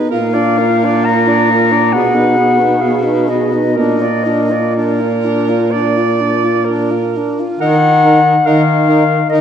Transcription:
Already playing: D#4
0.10 A#2 F4 A#4 F5
0.34 D4 D5
0.58 F4 A#4
0.83 D4 D5
1.05 F4 A#4 A#5
1.27 D4 D5
1.50 F4 A#4
1.72 D4 D5
1.92 B2 B3 G#4 F#5
2.14 D#4 B4
2.35 B3 G#4
2.57 D#4 B4
2.79 B3 G#4 F5
3.02 D#4 B4
3.27 B3 G#4 D#5
3.52 D#4 B4
3.74 A#2 D4 A#4
3.78 D#5
4.01 F4 D5
4.24 D4 A#4
4.50 F4 D5
4.76 D4 A#4 D5
5.01 F4
5.25 D4
5.49 F4
5.71 D4 D5
5.98 F4
6.21 D4
6.44 F4
6.65 D4 A#4
6.91 F4
7.17 D4
7.40 F4
7.60 D#3 D#4 A#4 F#5
8.03 D#4 A#4
8.46 D#3 D#4 A#4 F5
8.88 D#4 A#4
9.29 D#3 D#4 A#4 D#5

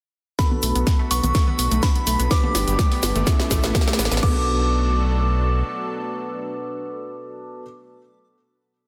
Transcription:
0.39 D3 F#3 A3 B3 D4 F#4 A4 B5, kick, snare, closed hi-hat, riser, shaker
0.52 B3, high conga, low conga
0.63 B1 A3, open hi-hat, shaker
0.75 B1 B3, closed hi-hat, shaker
0.87 B3, kick, snare, closed hi-hat, shaker
0.99 A3
1.11 B1 B3 C#6, open hi-hat, shaker
1.23 B1 B3, closed hi-hat, high conga, low conga, shaker
1.34 A3, kick, snare, closed hi-hat, shaker
1.47 B3, low conga
1.59 B1 B3, open hi-hat, shaker
1.71 B1 A3, closed hi-hat, shaker
1.82 B3 B5, kick, snare, closed hi-hat, high conga, shaker
1.96 B3, closed hi-hat
2.07 B1 A3, open hi-hat, shaker
2.19 B1 B3, closed hi-hat, shaker
2.31 B2 G3 B3 D4 G4 B4 D6, kick, snare, closed hi-hat, shaker
2.43 A3, high conga, low conga
2.55 G1 B3, snare, open hi-hat, shaker
2.67 G1 B3, closed hi-hat, shaker
2.79 A3, kick, snare, closed hi-hat, shaker
2.92 B3, open hi-hat
3.03 G1 B3, snare, open hi-hat, shaker
3.15 G1 A3, closed hi-hat, high conga, low conga, shaker
3.27 C#3 E3 A3 B3 C#4 E4 A4, kick, snare, closed hi-hat, shaker
3.39 B3, snare
3.51 A1 A3, kick, snare, open hi-hat, low conga, shaker
3.63 A1 B3, snare, closed hi-hat, shaker
3.75 B3, kick, snare, closed hi-hat, high conga, shaker
3.81 snare
3.88 A3, snare, closed hi-hat
3.93 snare
3.99 A1 B3, snare, open hi-hat, shaker
4.05 snare
4.11 A1 B3, snare, closed hi-hat, shaker
4.17 snare
4.23 B1 B2 F#3 A3 B3 D4 F#4 A4 D6, kick, crash

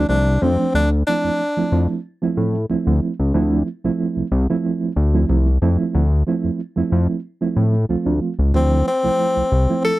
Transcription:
Already playing: F3 A3 C4 E4
0.09 C2 D4
0.42 F2 F3 A3 C4 D4
0.75 D2 D4
1.07 F3 A3 C4 D4 E4
1.24 F2
1.57 F2 F3 A3 C4 E4
1.72 F2
2.22 F3 A3 C4 E4
2.37 A2
2.70 D2 F3 A3 C4 E4
2.87 D2
3.19 C#2
3.34 D2 F3 A3 C4 E4
3.84 C2 F3 A3 C4 E4
4.17 C2
4.32 C2
4.50 F3 A3 C4 E4
4.96 D2
5.14 F3 A3 C4 E4
5.29 C2
5.62 F2 F3 A3 C4 E4
5.95 D2
6.27 F3 A3 C4 E4
6.44 F2
6.76 F2 F3 A3 C4 E4
6.92 F2
7.41 F3 A3 C4 E4
7.57 A2
7.89 D2 F3 A3 C4 F4
8.06 D2
8.39 C#2
8.54 D2 F3 A3 C4 E4
8.88 C4
9.03 C2 F3 A3 C4 E4
9.37 C2
9.52 C2
9.69 F3 A3 C4 E4
9.84 A4

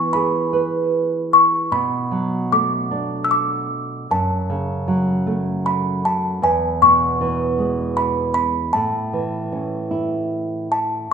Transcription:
Already playing: E3 B3
0.13 G#4 B5
0.53 B4
1.33 C#6
1.72 B2 B5
2.11 F#3
2.52 A3 D6
2.91 D4
3.24 E6
3.31 D6
4.11 F#2 A5
4.50 C#3
4.88 F#3
5.27 A3
5.66 B5
6.05 A5
6.42 E2 G#5
6.82 B2 C#6
7.21 E3
7.58 G#3
7.97 B5
8.34 B5
8.73 A2 A5
9.13 E3
9.52 C#4
9.91 E4
10.72 A5

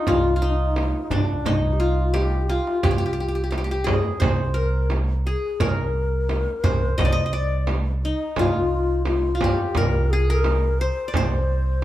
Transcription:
Already playing: D#4
0.07 C2 F4, frame drum, darbuka dum
0.36 F4
0.42 D#4, darbuka ka
0.50 D4
0.57 D#4, darbuka ka
0.76 darbuka tek, frame drum
1.10 C2 D4, darbuka dum, frame drum
1.29 darbuka ka
1.45 C2 D#4, darbuka dum, frame drum
1.73 G4
1.80 F4
2.14 G4, darbuka tek, frame drum
2.32 darbuka ka
2.42 G4
2.48 F4, darbuka tek
2.67 darbuka ka
2.83 C2 G4, frame drum, darbuka dum
2.91 G4
2.98 G4
3.06 G4
3.13 G4
3.20 G4
3.28 G4
3.35 G4
3.44 G4
3.51 G4, darbuka tek, frame drum
3.58 G4
3.64 G4
3.71 G4
3.84 G#4, frame drum, darbuka dum
4.04 darbuka ka
4.20 C2 C5, darbuka dum, frame drum
4.54 A#4, darbuka ka
4.90 darbuka tek, frame drum
5.09 darbuka ka
5.26 G#4, darbuka ka
5.44 darbuka ka
5.60 C2 A#4, frame drum, darbuka dum
6.29 darbuka tek, frame drum
6.64 C2 C5, darbuka dum, frame drum
6.82 darbuka ka
6.98 C2 D#5, darbuka dum, frame drum
7.05 D5
7.12 D#5
7.26 D#5
7.33 D5, darbuka ka
7.67 darbuka tek, frame drum
8.03 D#4, darbuka ka
8.19 darbuka ka
8.36 C2 F4, frame drum, darbuka dum
8.46 D#4
8.52 F4
9.05 F4, darbuka tek, frame drum
9.35 F4
9.41 G4, frame drum, darbuka dum
9.59 darbuka ka
9.75 C2 A#4, frame drum, darbuka dum
10.10 G#4, darbuka ka
10.28 A#4
10.44 darbuka tek, frame drum
10.62 darbuka ka
10.79 C5
10.97 darbuka ka
11.08 D5
11.14 C2 C5, frame drum, darbuka dum
11.49 darbuka ka
11.66 darbuka ka

